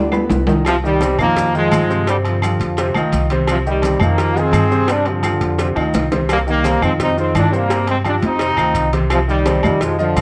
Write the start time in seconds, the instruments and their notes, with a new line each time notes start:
Already playing: upright bass D2, trombone section D3 G3
0.12 grand piano B3 B4 B5, high bongo, high conga, low timbale, claves, maracas
0.30 upright bass C2, high bongo, low bongo, high conga, low timbale, maracas
0.47 grand piano D#3 D#4 D#5, high conga, low timbale, maracas
0.65 trombone section C3 F3, cowbell, low agogo, claves, maracas
0.83 grand piano D#3 D#4 G4, trombone section D#3 G3, high conga, maracas
1.01 grand piano C3 C4 C5, cowbell, high conga, low agogo, maracas
1.18 upright bass F2, grand piano D#3 D#4 F4, trombone section F3 A#3, high conga, low conga, low agogo, claves, maracas
1.36 cowbell, high conga, low conga, maracas
1.54 grand piano D#3 D#4 F4, trombone section F3 G#3, high conga, maracas
1.71 upright bass G2, cowbell, high conga, low agogo, claves, maracas
1.90 grand piano C3 C4 C5, maracas
2.07 grand piano C3 C4 C5, trombone section D3 G3, cowbell, low agogo, maracas
2.25 trombone section D3 F3, cowbell, high conga, low agogo, maracas
2.42 grand piano F3 F4 G4, cowbell, high conga, low agogo, claves, maracas
2.59 upright bass F2, cowbell, maracas
2.77 grand piano C3 C4 C5, cowbell, high conga, low agogo, maracas
2.94 upright bass D2, grand piano D#3 D#4 F4, low agogo, claves, maracas
3.12 upright bass C2, cowbell, high conga, low agogo, maracas
3.30 grand piano C3 C4 C5, cowbell, high conga, maracas
3.47 trombone section C3 F3, cowbell, high conga, low agogo, claves, maracas
3.65 grand piano D#3 D#4 G4, trombone section D#3 G3, high conga, maracas
3.82 grand piano C3 C4 C5, cowbell, high conga, low agogo, maracas
4.00 upright bass F2, grand piano D#3 D#4 F4, trombone section F3 A#3, high conga, low conga, low agogo, claves, maracas
4.18 cowbell, maracas
4.35 grand piano D#3 D#4 F4, trombone section C4 G#4, high conga, maracas
4.52 upright bass G2, cowbell, high conga, low agogo, claves, maracas
4.71 grand piano C3 C4 C5, maracas
4.88 grand piano C3 C4 C5, trombone section G3 D4, cowbell, high conga, low agogo, maracas
5.05 trombone section D3, cowbell, high conga, low agogo, maracas
5.10 trombone section F3
5.23 grand piano F3 F4 G4, cowbell, high conga, low agogo, claves, maracas
5.41 upright bass F2, cowbell, maracas
5.58 grand piano C3 C4 C5, cowbell, high conga, low agogo, maracas
5.75 upright bass D2, grand piano D#3 D#4 F4, high bongo, low agogo, claves, maracas
5.94 upright bass C2, cowbell, low bongo, low agogo, maracas
6.12 grand piano C3 C4 C5, cowbell, low bongo, high conga, maracas
6.29 trombone section G3 A#3, cowbell, high conga, low agogo, claves, maracas
6.47 grand piano D#3 D#4 G4, trombone section G3 A#3, high conga, maracas
6.64 grand piano C3 C4 C5, cowbell, high conga, low agogo, maracas
6.82 upright bass F2, grand piano D#3 D#4 F4, trombone section G#3 C4, high conga, low conga, low agogo, claves, maracas
7.00 trombone section C4 D#4, cowbell, high conga, low conga, maracas
7.17 grand piano D#3 D#4 F4, trombone section G#3 C4, high conga, maracas
7.35 upright bass G2, trombone section G#3 D4, cowbell, high conga, low timbale, low agogo, claves, maracas
7.52 grand piano C3 C4 C5, trombone section G3 A#3, maracas
7.70 grand piano C3 C4 C5, cowbell, high conga, low agogo, maracas
7.87 trombone section G#3 C4, cowbell, high conga, low agogo, maracas
8.05 grand piano F3 F4 G4, trombone section G3 D4, cowbell, high conga, low agogo, claves, maracas
8.22 upright bass F2, trombone section C4 D#4, cowbell, high conga, maracas
8.39 grand piano C3 C4 C5, cowbell, high conga, low agogo, maracas
8.57 upright bass D2, grand piano D#3 D#4 F4, high conga, low agogo, claves, maracas
8.75 upright bass C2, cowbell, high conga, low agogo, maracas
8.93 grand piano C3 C4 C5, cowbell, high conga, maracas
9.10 trombone section C3 F3, cowbell, high conga, low agogo, claves, maracas
9.28 grand piano D#3 D#4 G4, trombone section D#3 G3, high conga, maracas
9.45 grand piano C3 C4 C5, cowbell, high conga, low agogo, maracas
9.63 upright bass F2, grand piano D#3 D#4 F4, high conga, low conga, low agogo, claves, maracas
9.81 trombone section F3 G#3, cowbell, high conga, low conga, maracas
9.98 trombone section D3 F3, grand piano F3 F4 D#5, maracas
10.16 upright bass G2, cowbell, high conga, low agogo, claves, maracas